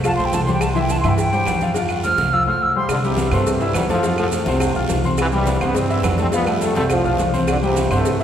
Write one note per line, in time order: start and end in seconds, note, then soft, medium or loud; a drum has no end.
0.00 0.17 C2 loud
0.00 claves medium
0.04 0.16 F3 medium
0.04 0.16 F4 medium
0.04 0.17 F5 medium
0.04 0.15 A5 loud
0.04 cowbell loud
0.04 high conga soft
0.04 low agogo loud
0.04 long guiro medium
0.04 maracas medium
0.16 0.32 B1 medium
0.16 0.42 A3 medium
0.16 0.42 A4 medium
0.16 0.42 C5 medium
0.16 0.27 C6 medium
0.16 high conga soft
0.16 maracas soft
0.25 0.36 G5 loud
0.33 0.99 C2 loud
0.33 0.43 A5 medium
0.33 cowbell medium
0.33 high conga medium
0.33 low timbale medium
0.33 low agogo medium
0.33 short guiro medium
0.33 maracas medium
0.44 0.71 G3 medium
0.44 0.71 G4 medium
0.44 0.53 C6 loud
0.44 low agogo medium
0.44 short guiro medium
0.44 maracas soft
0.48 0.71 C5 medium
0.48 high conga medium
0.54 0.64 G5 medium
0.61 0.71 A5 medium
0.61 cowbell loud
0.61 high conga soft
0.61 low agogo loud
0.61 long guiro medium
0.61 claves medium
0.61 maracas medium
0.73 0.99 E3 medium
0.73 0.99 E4 medium
0.73 0.99 E5 medium
0.73 0.81 C6 medium
0.73 high conga soft
0.73 maracas soft
0.82 0.92 G5 loud
0.89 0.99 A5 loud
0.89 cowbell medium
0.89 high conga medium
0.89 low timbale medium
0.89 low agogo medium
0.89 short guiro medium
0.89 maracas medium
1.00 1.44 G2 loud
1.00 1.10 C6 medium
1.00 claves medium
1.04 1.28 E3 medium
1.04 1.28 E4 medium
1.04 1.28 E5 medium
1.04 high conga soft
1.04 low conga medium
1.04 low agogo loud
1.04 short guiro medium
1.04 maracas soft
1.09 1.18 G5 loud
1.18 1.74 G5 loud
1.18 cowbell loud
1.18 high conga soft
1.18 long guiro medium
1.18 maracas medium
1.33 1.56 G3 medium
1.33 1.56 G4 medium
1.33 1.57 C5 medium
1.33 high conga soft
1.33 low agogo medium
1.33 maracas soft
1.46 2.13 F2 loud
1.46 cowbell medium
1.46 high conga medium
1.46 low timbale medium
1.46 low agogo loud
1.46 short guiro medium
1.46 claves medium
1.46 maracas medium
1.61 1.73 F3 medium
1.61 1.73 F4 medium
1.61 1.74 F5 medium
1.61 cowbell medium
1.61 high conga medium
1.61 short guiro medium
1.61 maracas soft
1.74 1.99 F3 medium
1.74 1.99 F4 medium
1.74 1.99 F5 medium
1.74 cowbell loud
1.74 high conga soft
1.74 low agogo medium
1.74 long guiro medium
1.74 maracas medium
1.89 high conga soft
1.89 low agogo loud
1.89 claves medium
1.89 maracas soft
2.04 2.28 A3 medium
2.04 2.28 A4 medium
2.04 2.28 C5 medium
2.04 2.35 F6 loud
2.04 cowbell medium
2.04 high conga medium
2.04 low timbale medium
2.04 short guiro medium
2.04 maracas medium
2.18 2.45 C2 loud
2.18 cowbell medium
2.18 high conga loud
2.18 low agogo medium
2.18 short guiro medium
2.18 maracas soft
2.33 2.44 F3 medium
2.33 2.45 F4 medium
2.33 2.45 F5 medium
2.33 2.47 E6 loud
2.47 2.70 A3 medium
2.47 2.70 A4 medium
2.47 2.71 C5 medium
2.47 2.64 F6 medium
2.62 2.76 E6 medium
2.76 2.87 G3 medium
2.76 2.88 G4 medium
2.76 2.88 C5 medium
2.76 2.90 C6 loud
2.89 3.29 C2 loud
2.89 3.04 G2 medium
2.89 2.96 D3 loud
2.89 cowbell loud
2.89 high conga soft
2.89 low agogo loud
2.89 long guiro medium
2.89 claves medium
2.89 maracas medium
3.03 3.57 E2 medium
3.03 3.57 G2 medium
3.03 3.31 C3 medium
3.03 3.27 G3 medium
3.03 3.28 G4 medium
3.03 3.28 G5 medium
3.03 high conga soft
3.03 maracas soft
3.17 cowbell medium
3.17 high conga loud
3.17 low timbale medium
3.17 low agogo medium
3.17 short guiro medium
3.17 maracas medium
3.31 3.72 G2 loud
3.31 3.85 C3 medium
3.31 3.85 E3 medium
3.31 3.58 A3 loud
3.31 3.56 C4 medium
3.31 3.57 C5 medium
3.31 3.57 C6 medium
3.31 high conga soft
3.31 low conga medium
3.31 low agogo loud
3.31 short guiro medium
3.31 claves medium
3.31 maracas soft
3.46 cowbell loud
3.46 high conga soft
3.46 long guiro medium
3.46 maracas medium
3.60 3.74 G3 loud
3.60 3.84 E4 medium
3.60 3.85 E5 medium
3.60 3.85 E6 medium
3.60 high conga soft
3.60 low agogo medium
3.60 maracas soft
3.74 4.41 F2 loud
3.74 3.81 G3 loud
3.74 cowbell medium
3.74 high conga medium
3.74 low timbale medium
3.74 low agogo loud
3.74 short guiro medium
3.74 claves medium
3.74 maracas medium
3.89 4.33 A2 medium
3.89 4.32 C3 medium
3.89 4.16 F3 loud
3.89 4.01 A3 medium
3.89 4.02 A4 medium
3.89 4.02 A5 medium
3.89 cowbell medium
3.89 high conga medium
3.89 short guiro medium
3.89 maracas soft
4.03 4.16 F3 loud
4.03 4.16 F4 loud
4.03 4.16 F5 medium
4.03 cowbell loud
4.03 low agogo medium
4.03 long guiro medium
4.03 maracas medium
4.17 4.25 F3 loud
4.17 4.42 A3 medium
4.17 4.42 A4 medium
4.17 4.42 A5 medium
4.17 high conga soft
4.17 low agogo loud
4.17 claves medium
4.17 maracas soft
4.32 5.01 G2 medium
4.32 5.01 A2 medium
4.32 5.00 C3 loud
4.32 cowbell medium
4.32 high conga medium
4.32 low timbale medium
4.32 short guiro medium
4.32 maracas medium
4.46 4.73 C2 loud
4.46 4.71 C4 medium
4.46 4.71 C5 medium
4.46 4.71 C6 medium
4.46 cowbell medium
4.46 high conga loud
4.46 low agogo medium
4.46 short guiro medium
4.46 maracas soft
4.60 cowbell loud
4.60 high conga soft
4.60 low agogo loud
4.60 long guiro medium
4.60 claves medium
4.60 maracas medium
4.75 4.89 B1 medium
4.75 4.99 F4 medium
4.75 4.99 F5 medium
4.75 4.99 F6 medium
4.75 high conga soft
4.75 maracas soft
4.89 5.56 C2 medium
4.89 cowbell medium
4.89 high conga medium
4.89 low timbale medium
4.89 low agogo medium
4.89 short guiro medium
4.89 maracas medium
5.04 5.28 C4 medium
5.04 5.28 C5 medium
5.04 5.28 C6 medium
5.04 high conga medium
5.04 low agogo medium
5.04 short guiro medium
5.04 maracas soft
5.18 5.72 G2 medium
5.18 5.33 C3 medium
5.18 5.26 E3 loud
5.18 cowbell loud
5.18 low agogo loud
5.18 long guiro medium
5.18 claves medium
5.18 maracas medium
5.32 5.87 C3 medium
5.32 5.76 E3 medium
5.32 5.59 G3 loud
5.32 5.56 G3 medium
5.32 5.56 G4 medium
5.32 5.56 G5 medium
5.32 high conga soft
5.32 maracas soft
5.46 cowbell medium
5.46 high conga loud
5.46 low timbale medium
5.46 low agogo medium
5.46 short guiro medium
5.46 maracas medium
5.61 6.01 G2 loud
5.61 5.76 B3 loud
5.61 5.85 C4 medium
5.61 5.85 C5 medium
5.61 5.85 C6 medium
5.61 high conga soft
5.61 low conga medium
5.61 low agogo loud
5.61 short guiro medium
5.61 claves medium
5.61 maracas soft
5.75 6.30 E3 medium
5.75 6.30 G3 medium
5.75 6.19 C4 loud
5.75 cowbell loud
5.75 high conga soft
5.75 low conga medium
5.75 long guiro medium
5.75 maracas medium
5.89 6.14 E4 medium
5.89 6.14 E5 medium
5.89 6.14 E6 medium
5.89 high conga soft
5.89 low agogo medium
5.89 maracas soft
6.03 6.70 F2 loud
6.03 cowbell medium
6.03 high conga medium
6.03 low timbale medium
6.03 low agogo loud
6.03 short guiro medium
6.03 claves medium
6.03 maracas medium
6.18 6.30 A3 medium
6.18 6.26 C4 loud
6.18 6.31 A4 medium
6.18 6.31 A5 medium
6.18 cowbell medium
6.18 high conga medium
6.18 short guiro medium
6.18 maracas soft
6.32 6.45 F3 medium
6.32 6.87 G3 medium
6.32 6.47 B3 loud
6.32 6.45 F4 loud
6.32 6.45 F5 medium
6.32 cowbell loud
6.32 low agogo loud
6.32 long guiro medium
6.32 maracas medium
6.47 6.71 A3 medium
6.47 6.60 A3 loud
6.47 6.71 A4 medium
6.47 6.71 A5 medium
6.47 high conga soft
6.47 low agogo loud
6.47 claves medium
6.47 maracas soft
6.61 6.75 A3 loud
6.61 cowbell medium
6.61 high conga medium
6.61 low timbale medium
6.61 short guiro medium
6.61 maracas medium
6.75 7.03 C2 loud
6.75 6.82 A3 loud
6.75 6.99 C4 medium
6.75 7.00 C5 medium
6.75 7.00 C6 medium
6.75 cowbell medium
6.75 high conga loud
6.75 low agogo medium
6.75 short guiro medium
6.75 maracas soft
6.90 7.44 A2 medium
6.90 7.45 C3 medium
6.90 7.31 F3 loud
6.90 cowbell loud
6.90 high conga soft
6.90 low agogo loud
6.90 long guiro medium
6.90 claves medium
6.90 maracas medium
7.05 7.18 B1 medium
7.05 7.29 F4 medium
7.05 7.29 F5 medium
7.05 7.29 F6 medium
7.05 high conga soft
7.05 maracas soft
7.18 7.86 C2 medium
7.18 cowbell medium
7.18 high conga medium
7.18 low timbale medium
7.18 low agogo medium
7.18 short guiro medium
7.18 maracas medium
7.33 7.57 C4 medium
7.33 7.57 C5 medium
7.33 7.57 C6 medium
7.33 high conga medium
7.33 low agogo medium
7.33 short guiro medium
7.33 maracas soft
7.47 7.64 G2 medium
7.47 7.56 D3 loud
7.47 cowbell loud
7.47 high conga soft
7.47 low agogo loud
7.47 long guiro medium
7.47 claves medium
7.47 maracas medium
7.62 8.17 E2 medium
7.62 8.17 G2 medium
7.62 7.90 C3 loud
7.62 7.86 G3 medium
7.62 7.86 G4 medium
7.62 7.86 G5 medium
7.62 high conga soft
7.62 maracas soft
7.76 cowbell medium
7.76 high conga medium
7.76 low timbale medium
7.76 low agogo medium
7.76 short guiro medium
7.76 maracas medium
7.91 8.24 G2 loud
7.91 8.24 C3 medium
7.91 8.24 E3 medium
7.91 8.20 A3 loud
7.91 8.15 C4 medium
7.91 8.15 C5 medium
7.91 8.15 C6 medium
7.91 high conga soft
7.91 low conga medium
7.91 low agogo loud
7.91 short guiro medium
7.91 claves medium
7.91 maracas soft
8.05 cowbell loud
8.05 high conga soft
8.05 low conga medium
8.05 long guiro medium
8.05 maracas medium
8.20 8.24 E4 medium
8.20 8.24 E5 medium
8.20 maracas soft